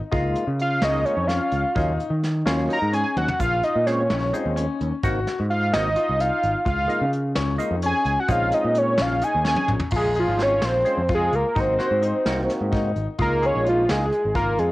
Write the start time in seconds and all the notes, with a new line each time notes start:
0.11 C#2 G#3 A#3 D#4 F4, kick, closed hi-hat
0.35 closed hi-hat
0.47 C#3
0.59 F5, closed hi-hat
0.82 C#2 G#3 A#3 C#4 D#4 F4 D#5, snare, closed hi-hat
1.05 D#4 C#5, closed hi-hat
1.17 F2
1.27 C#4 F5, snare, closed hi-hat
1.52 C#2, closed hi-hat
1.75 D#2 F#3 A#3 C#4 D#4 F4, kick, closed hi-hat
2.00 closed hi-hat
2.10 D#3
2.24 snare, closed hi-hat
2.46 D#2 F#3 A#3 C#4 F4, snare, closed hi-hat
2.69 D#4 A#5, closed hi-hat
2.82 G#2
2.93 C#4 G#5, closed hi-hat
3.17 D#2 F#5, high tom
3.28 floor tom
3.39 A#1 F4 F5, kick, closed hi-hat, shaker
3.63 D#5, closed hi-hat
3.76 A#2
3.86 G#3 C4 C#4 F4 C#5, snare, closed hi-hat
4.10 A#1 C#4, snare, closed hi-hat
4.33 G#3 C4 C#4 D#4 F4, closed hi-hat, shaker
4.46 D#2
4.56 C#4, closed hi-hat
4.81 D#2, closed hi-hat
5.03 G#1 A#3 C4 D#4 F#4, kick, closed hi-hat, shaker
5.27 snare, closed hi-hat
5.40 G#2
5.50 F5, closed hi-hat
5.72 G#1 A#3 C4 D#4 F#4 D#5, snare, closed hi-hat
5.96 F4, closed hi-hat
6.09 C2
6.19 D#4 F5, closed hi-hat
6.43 G#1, closed hi-hat
6.65 C#2 F4 F5, kick, closed hi-hat, shaker
6.88 G#3 A#3 D#4 F4, closed hi-hat
7.01 C#3
7.13 closed hi-hat
7.35 C#2 C#4, snare, closed hi-hat
7.58 G#3 A#3 D#4 F4, closed hi-hat, shaker
7.71 F2
7.82 C#4 G#5, closed hi-hat
8.05 C#2, closed hi-hat
8.20 F#5
8.28 A#1 G#3 C4 C#4 D#4 F4 F5, kick, closed hi-hat, shaker
8.52 D#5, closed hi-hat, shaker
8.65 A#2
8.75 C#5, closed hi-hat, shaker
8.98 A#1 C#4 F5, snare, closed hi-hat
9.22 D#4 G#5, closed hi-hat, shaker
9.35 D#2
9.44 C#4 G#5, snare
9.56 high tom
9.68 A#1, mid tom
9.80 floor tom
9.90 A#1 F4, kick, crash
9.96 G#4
10.15 G#4, closed hi-hat
10.19 F4
10.28 G#1
10.38 G#3 C4 C#4 F4, snare, closed hi-hat
10.42 C#5
10.62 A#1 C5, snare, closed hi-hat
10.85 G#3 C4 C#4 F4, closed hi-hat
10.97 F2
11.09 F4, kick, closed hi-hat
11.15 G#4
11.32 C#2 A#4, closed hi-hat
11.55 G#1 A#3 C4 D#4 F#4, kick, closed hi-hat
11.59 C5
11.79 F#4, snare, closed hi-hat
11.91 G#2
12.02 D#4, closed hi-hat
12.26 C2 A#3 C4 D#4 F#4, snare, closed hi-hat
12.50 snare, closed hi-hat
12.61 G#2
12.72 D#4, kick, snare, closed hi-hat
12.96 G#1, closed hi-hat
13.19 C#2 G#3 A#3 D#4 F4 A#4, kick, closed hi-hat
13.42 G#4 C#5, closed hi-hat
13.55 A#1
13.65 F4, closed hi-hat
13.69 F4
13.89 C#2 G#3 A#3 D#4 F4 G#4, snare, closed hi-hat
14.12 closed hi-hat
14.25 G#1
14.35 F4 A#4, kick, closed hi-hat
14.59 F2 G#4, closed hi-hat